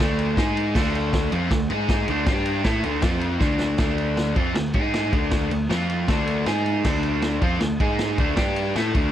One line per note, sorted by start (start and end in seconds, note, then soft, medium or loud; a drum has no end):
0.00 0.35 D2 loud
0.00 0.36 D3 loud
0.00 0.37 A3 loud
0.00 0.37 D4 loud
0.19 ride medium
0.37 0.73 G#2 loud
0.37 0.75 G#3 loud
0.37 0.75 D#4 loud
0.37 0.75 G#4 loud
0.37 kick loud
0.37 snare loud
0.37 ride medium
0.57 ride medium
0.75 1.28 D2 loud
0.75 1.31 D3 loud
0.75 1.32 A3 loud
0.75 1.32 D4 loud
0.75 kick loud
0.75 snare loud
0.75 crash loud
0.95 ride medium
1.13 kick loud
1.13 snare loud
1.13 ride medium
1.32 1.50 F2 loud
1.32 1.51 F3 loud
1.32 1.51 C4 loud
1.32 1.51 F4 loud
1.32 ride medium
1.51 1.69 D2 medium
1.51 1.67 D3 medium
1.51 1.67 A3 medium
1.51 kick loud
1.51 snare loud
1.51 ride loud
1.70 2.05 G#2 medium
1.70 2.08 G#3 loud
1.70 2.08 D#4 loud
1.70 2.09 G#4 loud
1.70 ride medium
1.89 kick loud
1.89 snare loud
1.89 ride loud
2.08 2.26 D2 medium
2.08 2.27 D3 loud
2.08 2.27 A3 medium
2.08 2.27 D4 loud
2.08 ride medium
2.26 2.62 G2 medium
2.26 2.64 G3 medium
2.26 2.65 D4 loud
2.26 2.65 G4 loud
2.26 kick loud
2.26 snare loud
2.26 ride loud
2.46 ride medium
2.64 2.83 A2 loud
2.64 2.83 A3 medium
2.64 2.84 E4 loud
2.64 2.84 A4 loud
2.64 kick loud
2.64 snare loud
2.64 ride loud
2.83 3.02 D2 loud
2.83 3.03 D3 medium
2.83 3.04 A3 loud
2.83 3.05 D4 loud
2.83 ride medium
3.02 3.39 F2 medium
3.02 3.40 F3 loud
3.02 3.40 C4 medium
3.02 3.41 F4 loud
3.02 kick loud
3.02 snare loud
3.02 ride loud
3.21 ride medium
3.40 3.76 D2 loud
3.40 3.77 D3 loud
3.40 3.78 A3 loud
3.40 3.79 D4 loud
3.40 kick loud
3.40 snare medium
3.59 snare medium
3.78 4.32 D2 loud
3.78 4.36 D3 medium
3.78 4.36 A3 medium
3.78 4.36 D4 loud
3.78 kick loud
3.78 snare loud
3.78 ride loud
3.98 ride medium
4.17 snare loud
4.17 ride medium
4.36 4.54 F2 loud
4.36 4.55 F3 medium
4.36 4.55 C4 loud
4.36 4.56 F4 loud
4.36 kick loud
4.36 ride medium
4.55 4.73 D2 medium
4.55 4.71 D3 medium
4.55 4.74 A3 medium
4.55 snare loud
4.55 ride loud
4.74 5.10 G#2 medium
4.74 5.12 G#3 loud
4.74 5.13 D#4 loud
4.74 5.13 G#4 loud
4.74 kick loud
4.74 ride medium
4.94 snare loud
4.94 ride loud
5.13 5.48 D2 medium
5.13 5.49 D3 loud
5.13 5.50 A3 loud
5.13 5.51 D4 loud
5.13 kick loud
5.13 ride medium
5.31 kick loud
5.31 snare loud
5.31 ride loud
5.50 5.69 D2 medium
5.50 5.66 D3 medium
5.50 5.67 A3 medium
5.50 ride medium
5.69 6.06 F2 loud
5.69 6.08 F3 medium
5.69 6.08 C4 loud
5.69 6.08 F4 loud
5.69 snare loud
5.69 ride medium
5.89 ride medium
6.08 6.44 D2 medium
6.08 6.46 D3 loud
6.08 6.46 A3 medium
6.08 6.46 D4 loud
6.08 kick loud
6.08 snare loud
6.08 ride loud
6.27 ride medium
6.46 6.82 G#2 loud
6.46 6.84 G#3 loud
6.46 6.84 D#4 loud
6.46 6.85 G#4 loud
6.46 snare loud
6.46 ride loud
6.66 ride medium
6.85 7.38 D2 medium
6.85 7.41 D3 medium
6.85 7.42 A3 loud
6.85 7.42 D4 loud
6.85 kick loud
6.85 snare loud
6.85 crash loud
7.03 ride medium
7.22 snare loud
7.22 ride medium
7.41 7.60 F2 loud
7.41 7.60 F3 medium
7.41 7.61 C4 medium
7.41 7.61 F4 loud
7.41 kick loud
7.41 ride medium
7.60 7.79 D2 medium
7.60 7.77 D3 medium
7.60 7.77 A3 medium
7.60 snare loud
7.60 ride medium
7.80 8.16 G#2 loud
7.80 8.18 G#3 loud
7.80 8.18 D#4 loud
7.80 8.18 G#4 loud
7.80 kick loud
7.80 ride medium
7.99 snare loud
7.99 ride loud
8.18 8.36 D2 loud
8.18 8.37 D3 medium
8.18 8.36 A3 loud
8.18 8.36 D4 loud
8.18 kick loud
8.18 ride medium
8.36 8.73 G2 loud
8.36 8.75 G3 medium
8.36 8.75 D4 loud
8.36 8.75 G4 loud
8.36 kick loud
8.36 snare loud
8.36 ride loud
8.56 ride medium
8.75 8.93 A2 loud
8.75 8.94 A3 medium
8.75 8.95 E4 loud
8.75 8.95 A4 loud
8.75 snare medium
8.75 ride loud
8.95 9.12 D2 loud
8.95 9.12 D3 medium
8.95 9.12 A3 loud
8.95 9.12 D4 loud
8.95 kick loud
8.95 ride medium